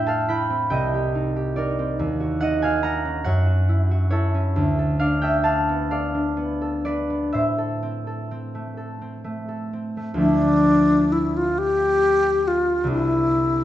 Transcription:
Already playing: harp A2 E4 C5 E5 G5
0.07 harp A4 F5 A5
0.29 harp E4 G5 B5
0.50 harp C4
0.70 harp C2 D#5 G5
0.94 harp G4
1.15 harp D#4
1.36 harp G4
1.56 harp D#4 A#4 D5
1.79 harp C4
1.99 harp D#2
2.20 harp F#4
2.41 harp D#4 D#5 F#5
2.62 harp F#4 F5 G#5
2.83 harp D#4 F#5 A#5
3.05 harp C#4
3.24 harp F#2 C#5 F#5
3.47 harp F#4
3.69 harp E4
3.91 harp F#4
4.10 harp E4 A4 C#5
4.34 harp C#4
4.56 harp D2
4.79 harp A4
4.99 harp D4 D5 F5
5.22 harp A4 E5 G5
5.44 harp D4 F5 A5
5.69 harp B3
5.91 harp A4 D5 F5
6.14 harp D4
6.37 harp B3
6.62 harp A4
6.85 harp D4 B4 D5
7.10 harp B3
7.33 harp A2 C5 E5
7.58 harp A4
7.83 harp C4
8.07 harp A4
8.31 harp C4
8.55 harp A3
8.77 harp A4
9.02 harp C4
9.24 harp A3
9.48 harp A4
9.73 harp C4
9.97 harp A3
10.14 harp D2 F3 A3
10.18 harp D4 E4, alto flute D4
11.12 alto flute E4
11.37 alto flute F4
11.58 alto flute G4
12.47 alto flute F4
12.84 harp C2 G3 C4
12.89 harp D4, alto flute E4

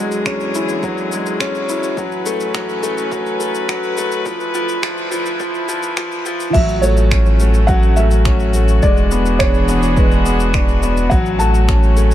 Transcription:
Already playing: string section E2 D3 E3 F#3 G#4, grand piano F#3 G#3
0.12 shaker
0.26 grand piano C#4, finger snap, kick, shaker
0.40 shaker
0.55 grand piano E4, shaker
0.69 shaker
0.83 grand piano F#3, kick, shaker
0.98 shaker
1.12 grand piano G#3, shaker
1.26 shaker
1.40 grand piano C#4, finger snap, kick, shaker
1.55 shaker
1.69 grand piano E4, shaker
1.83 shaker
1.96 string section A2 E3 C#4 B4, grand piano F#3, kick, shaker
2.12 shaker
2.26 grand piano A3, shaker
2.40 shaker
2.54 grand piano F#3, finger snap, kick, shaker
2.69 shaker
2.83 grand piano A3, shaker
2.98 shaker
3.12 grand piano F#3, kick, shaker
3.26 shaker
3.40 grand piano A3, shaker
3.55 shaker
3.69 grand piano F#3, finger snap, kick, shaker
3.83 shaker
3.97 grand piano A3, shaker
4.12 shaker
4.25 string section D2 D3 F3 E4, grand piano F3, kick, shaker
4.40 shaker
4.54 grand piano F3, shaker
4.69 shaker
4.83 grand piano F3, finger snap, kick, shaker
4.98 shaker
5.12 grand piano F3, shaker
5.26 shaker
5.40 grand piano F3, kick, shaker
5.55 shaker
5.68 grand piano F3, shaker
5.83 shaker
5.97 grand piano F3, finger snap, kick, shaker
6.12 shaker
6.26 grand piano F3, shaker
6.40 shaker
6.53 sub bass A1, grand piano F#3, string section A3 C#4 F#4, felt piano E5, kick, crash, shaker
6.69 shaker
6.82 grand piano A3, felt piano C#5, shaker
6.97 shaker
7.11 grand piano C#4, finger snap, kick, shaker
7.26 shaker
7.40 grand piano A3, shaker
7.54 shaker
7.67 grand piano F#3, felt piano F#5, kick, shaker
7.83 shaker
7.96 grand piano A3, felt piano E5, shaker
8.11 shaker
8.25 grand piano C#4, finger snap, kick, shaker
8.40 shaker
8.54 grand piano A3, shaker
8.68 shaker
8.82 sub bass E1, string section E3 B3 D4 G#4, grand piano G#3, felt piano D5, kick, shaker
8.97 shaker
9.11 grand piano B3, shaker
9.26 shaker
9.39 grand piano D4, felt piano C#5, finger snap, kick, shaker
9.54 shaker
9.68 grand piano B3, shaker
9.83 shaker
9.96 grand piano G#3, felt piano B4, kick, shaker
10.11 shaker
10.26 grand piano B3, shaker
10.40 shaker
10.54 grand piano D4, finger snap, kick, shaker
10.68 shaker
10.83 grand piano B3, shaker
10.97 shaker
11.10 sub bass A1, grand piano F#3, string section A3 C#4, felt piano F#5, kick, shaker
11.26 shaker
11.39 grand piano A3, felt piano A5, shaker
11.55 shaker
11.68 grand piano C#4, finger snap, kick, shaker
11.83 shaker
11.97 grand piano A3, shaker
12.11 shaker

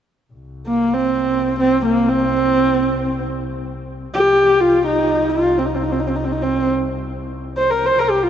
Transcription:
0.33 double bass C2
0.67 horsehead fiddle A#3
0.94 horsehead fiddle C4
1.60 horsehead fiddle C4
1.86 horsehead fiddle A#3
2.09 horsehead fiddle C4
4.14 double bass C2, horsehead fiddle G4
4.60 horsehead fiddle F4
4.87 horsehead fiddle D#4
5.30 horsehead fiddle F4
5.58 horsehead fiddle C4
5.66 horsehead fiddle D#4
5.75 horsehead fiddle C4
5.83 horsehead fiddle D#4
5.92 horsehead fiddle C4
6.00 horsehead fiddle D#4
6.07 horsehead fiddle C4
6.16 horsehead fiddle D#4
6.25 horsehead fiddle C4
6.32 horsehead fiddle D#4
6.42 horsehead fiddle C4
7.57 horsehead fiddle C5
7.71 horsehead fiddle A#4
7.86 horsehead fiddle C5
7.99 double bass C2, horsehead fiddle A#4
8.10 horsehead fiddle G4
8.23 horsehead fiddle F4

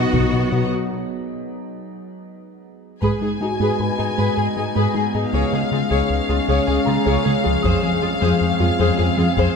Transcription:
Already playing: synth drone F#3 B3 D#4 D#5, grand piano G#3 G#4, viola section B3, cello section F#4, violin section D#5 F#5
0.13 analog synth bass B2, synth pluck B3, taiko
0.32 analog synth bass B2, synth pluck B4
0.52 analog synth bass B2, synth pluck B4
3.01 analog synth bass G#2, cello section G#2, synth pluck G#3, synth drone G#3 B3 D#4 D#5, viola section G#4, violin section B4 G#5, taiko
3.21 cello section G#2, analog synth bass G#3, synth pluck D#4, viola section G#4, violin section G#4
3.40 cello section G#2, analog synth bass G#3, violin section D#4, synth pluck D#4, grand piano F#4 G#5, viola section G#4
3.60 analog synth bass G#2, cello section G#2, synth pluck G#3, viola section G#4, violin section B4
3.79 analog synth bass G#2, grand piano B4 B5
3.99 analog synth bass G#2, cello section G#2, violin section D#4, synth pluck G#4, viola section G#4
4.17 cello section G#2, analog synth bass G#2, synth pluck G#3, viola section G#4, violin section B4
4.36 cello section G#2, analog synth bass G#2, synth pluck G#4, viola section G#4, violin section G#4
4.56 cello section G#2, analog synth bass G#3, synth pluck D#4, violin section D#4, viola section G#4
4.75 cello section G#2, analog synth bass G#2, synth pluck G#3, viola section G#4, violin section B4
4.94 cello section G#2, analog synth bass G#3, synth pluck D#4, viola section G#4, violin section G#4
5.14 cello section G#2, analog synth bass G#2, synth pluck B3, violin section D#4, viola section G#4
5.32 cello section C#2, analog synth bass C#2, synth pluck C#3, synth drone C#4 G#4 C#5, viola section G#4, violin section C#5 F5
5.52 cello section C#2, analog synth bass C#3, synth pluck G#3, viola section G#4, violin section G#4
5.71 cello section C#2, analog synth bass C#3, synth pluck G#3, violin section F4, viola section G#4
5.90 analog synth bass C#2, cello section C#2, synth pluck C#3, viola section G#4, violin section C#5
6.10 analog synth bass C#2
6.28 analog synth bass C#2, cello section C#2, synth pluck C#4, violin section F4, viola section G#4
6.47 analog synth bass C#2, cello section C#2, synth pluck C#3, viola section G#4, violin section C#5
6.67 analog synth bass C#2, cello section C#2, synth pluck C#4, viola section G#4, violin section G#4
6.86 cello section C#2, analog synth bass C#3, synth pluck G#3, violin section F4, viola section G#4, grand piano A#5
7.05 analog synth bass C#2, cello section C#2, synth pluck C#3, viola section G#4, violin section C#5
7.24 cello section C#2, analog synth bass C#3, synth pluck G#3, viola section G#4, violin section G#4
7.43 cello section C#2, analog synth bass C#2, synth pluck F3, violin section F4, viola section G#4
7.62 cello section F2, analog synth bass F2, synth pluck F3, synth drone G#3 C4 F5, viola section G#4, violin section C5, grand piano D#6, taiko
7.82 cello section F2, analog synth bass F3, synth pluck C4, viola section G#4, violin section G#4
8.01 cello section F2, analog synth bass F3, synth pluck C4, violin section F4, viola section G#4
8.20 analog synth bass F2, cello section F2, synth pluck F3, viola section G#4, violin section C5
8.41 analog synth bass F2
8.60 analog synth bass F2, cello section F2, violin section F4, synth pluck F4, viola section G#4
8.79 cello section F2, analog synth bass F2, synth pluck F3, viola section G#4, violin section C5
8.98 cello section F2, analog synth bass F2, synth pluck F4, violin section G#4, viola section G#4
9.17 cello section F2, analog synth bass F3, synth pluck C4, violin section F4, viola section G#4
9.37 analog synth bass F2, cello section F2, synth pluck F3, viola section G#4, violin section C5, taiko

